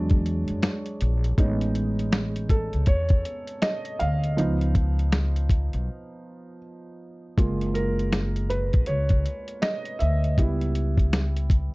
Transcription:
0.00 0.45 E2 loud
0.00 0.41 F#3 medium
0.00 0.41 G#3 soft
0.00 0.41 D4 medium
0.00 0.95 D5 medium
0.10 kick medium
0.10 closed hi-hat soft
0.26 closed hi-hat medium
0.48 0.63 F#2 medium
0.48 closed hi-hat medium
0.63 finger snap medium
0.63 snare loud
0.63 closed hi-hat medium
0.86 closed hi-hat soft
1.01 1.37 A#1 loud
1.01 closed hi-hat medium
1.24 closed hi-hat medium
1.38 2.69 A1 loud
1.38 1.91 G#3 medium
1.38 1.91 B3 medium
1.38 1.91 C#4 medium
1.38 1.91 D#4 medium
1.38 kick loud
1.38 closed hi-hat medium
1.61 closed hi-hat soft
1.75 closed hi-hat medium
1.99 closed hi-hat soft
2.12 finger snap medium
2.12 snare loud
2.12 closed hi-hat medium
2.36 closed hi-hat medium
2.49 2.89 A4 medium
2.49 kick medium
2.49 closed hi-hat medium
2.73 2.87 C#2 medium
2.73 closed hi-hat soft
2.86 3.23 E2 loud
2.86 3.65 C#5 medium
2.86 kick medium
2.86 closed hi-hat medium
3.09 kick medium
3.09 closed hi-hat soft
3.25 closed hi-hat medium
3.47 closed hi-hat medium
3.62 4.01 D#5 loud
3.62 finger snap medium
3.62 snare loud
3.62 closed hi-hat medium
3.85 closed hi-hat soft
3.99 4.36 D2 medium
3.99 6.58 F5 loud
3.99 closed hi-hat medium
4.24 closed hi-hat soft
4.37 5.70 C#2 loud
4.37 4.90 F3 medium
4.37 4.91 B3 soft
4.37 4.91 D#4 medium
4.37 closed hi-hat medium
4.61 closed hi-hat soft
4.75 kick medium
4.75 closed hi-hat medium
4.99 closed hi-hat soft
5.12 finger snap medium
5.12 snare loud
5.12 closed hi-hat medium
5.36 closed hi-hat medium
5.49 kick medium
5.49 closed hi-hat medium
5.73 5.88 B1 medium
5.73 closed hi-hat soft
7.37 8.69 F#1 loud
7.37 8.46 G#3 medium
7.37 8.47 A#3 soft
7.37 8.47 F4 medium
7.37 kick loud
7.37 closed hi-hat medium
7.61 closed hi-hat soft
7.74 8.46 A#4 medium
7.74 closed hi-hat medium
7.99 closed hi-hat soft
8.12 finger snap medium
8.12 snare loud
8.12 closed hi-hat medium
8.36 closed hi-hat soft
8.50 8.89 B4 medium
8.50 closed hi-hat medium
8.73 8.88 A#1 medium
8.73 kick medium
8.73 closed hi-hat soft
8.86 9.24 C#2 medium
8.86 9.65 C#5 medium
8.86 closed hi-hat medium
9.09 kick medium
9.09 closed hi-hat soft
9.26 closed hi-hat medium
9.48 closed hi-hat soft
9.62 10.01 D#5 loud
9.62 finger snap medium
9.62 snare loud
9.62 closed hi-hat medium
9.85 closed hi-hat soft
9.99 10.37 D2 medium
9.99 11.74 E5 medium
9.99 closed hi-hat medium
10.24 closed hi-hat soft
10.38 11.69 C#2 loud
10.38 11.46 G3 medium
10.38 11.47 B3 soft
10.38 11.47 E4 medium
10.38 kick loud
10.38 closed hi-hat medium
10.61 closed hi-hat soft
10.75 closed hi-hat medium
10.97 kick medium
10.97 closed hi-hat soft
11.13 finger snap medium
11.13 snare loud
11.13 closed hi-hat medium
11.36 closed hi-hat medium
11.50 kick medium
11.50 closed hi-hat medium

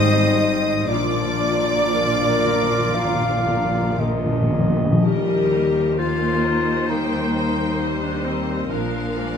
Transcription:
0.00 0.89 G#1 medium
0.00 0.89 G#2 medium
0.00 0.94 G#2 medium
0.00 0.93 D#3 medium
0.00 0.85 G3 medium
0.00 0.93 G3 medium
0.00 0.84 C4 medium
0.00 0.89 D#4 medium
0.00 0.93 D#4 medium
0.00 0.88 C5 medium
0.00 0.93 C5 medium
0.00 0.37 D#5 medium
0.00 0.85 D#5 medium
0.00 0.89 D#5 medium
0.00 0.89 D#6 loud
0.13 0.94 G4 medium
0.38 0.94 D#5 medium
0.63 0.94 C6 medium
0.86 4.78 A#1 medium
0.86 4.78 A#2 medium
0.86 4.79 A#2 medium
0.86 4.00 D4 medium
0.86 3.97 D5 medium
0.86 1.83 D5 medium
0.86 3.98 D5 medium
0.86 4.02 D6 medium
0.90 4.79 F3 medium
0.90 4.79 F4 medium
0.97 1.05 A#2 soft
1.15 1.23 A#2 soft
1.15 4.27 F3 soft
1.24 1.32 A#2 soft
1.33 1.40 A#2 soft
1.42 1.49 A#2 soft
1.42 4.00 A#3 soft
1.60 1.67 A#2 soft
1.68 1.76 A#2 soft
1.68 2.21 A#4 soft
1.77 1.84 A#2 soft
1.85 1.93 A#2 soft
1.94 2.02 A#2 soft
1.94 5.08 F4 medium
1.94 2.96 A#4 medium
2.03 2.10 A#2 medium
2.11 2.19 A#2 soft
2.20 2.27 A#2 medium
2.20 3.74 A#4 soft
2.28 2.36 A#2 medium
2.37 2.44 A#2 medium
2.45 2.52 A#2 medium
2.45 2.98 A#5 medium
2.53 2.61 A#2 medium
2.62 2.70 A#2 medium
2.71 2.78 A#2 medium
2.71 3.23 F5 medium
2.79 2.88 A#2 medium
2.89 2.97 A#2 medium
2.95 3.04 A#2 medium
2.95 4.02 F5 medium
2.99 3.48 A#5 medium
3.05 3.13 A#2 medium
3.14 3.20 A#2 medium
3.21 3.28 A#2 medium
3.21 5.08 F5 medium
3.29 3.36 A#2 medium
3.37 3.45 A#2 medium
3.46 3.53 A#2 medium
3.46 7.39 A#5 medium
3.54 3.63 A#2 medium
3.64 3.71 A#2 medium
3.72 3.80 A#2 medium
3.72 6.43 A#4 medium
3.81 3.89 A#2 medium
3.90 3.97 A#2 medium
3.98 4.07 A#2 medium
3.98 4.53 A#3 medium
3.98 5.03 D#5 medium
4.08 4.14 A#2 loud
4.15 4.23 A#2 medium
4.24 4.32 A#2 loud
4.24 4.78 F3 soft
4.33 4.40 A#2 loud
4.41 4.49 A#2 loud
4.50 4.58 A#2 loud
4.50 5.50 A#3 soft
4.59 4.67 A#2 loud
4.68 4.75 A#2 loud
4.76 4.83 A#2 loud
4.76 5.08 F3 soft
4.84 4.91 A#2 loud
4.92 5.00 A#2 loud
5.02 8.66 D#2 medium
5.02 8.67 D#2 medium
5.02 8.74 D#3 medium
5.02 5.93 G3 medium
5.02 6.00 G4 medium
5.02 5.93 A#4 medium
5.02 5.94 D#5 medium
5.51 7.35 A#3 soft
5.95 6.86 A#3 medium
5.95 6.91 F4 medium
5.95 7.80 G4 soft
5.95 8.69 C5 medium
5.99 6.45 F5 medium
6.44 8.26 A#4 soft
6.44 6.90 D#5 medium
6.88 8.74 G3 soft
6.88 7.79 A#3 medium
6.88 8.05 D#4 medium
6.88 7.33 G4 medium
6.92 7.35 G5 medium
7.36 9.37 A#3 soft
7.36 8.71 C5 medium
7.36 7.81 G5 medium
7.81 8.71 G3 medium
7.81 8.74 G4 soft
7.81 8.71 D#5 soft
8.03 8.27 D4 medium
8.26 8.72 C4 medium
8.26 9.37 A#4 soft
8.68 9.37 A#1 medium
8.68 9.37 A#2 medium
8.68 9.37 F3 medium
8.68 9.37 D4 medium
8.68 9.12 A#4 medium
8.68 9.15 A#4 medium
8.68 9.37 F5 medium
9.14 9.37 G#3 soft
9.14 9.37 A#4 medium
9.14 9.37 D5 medium

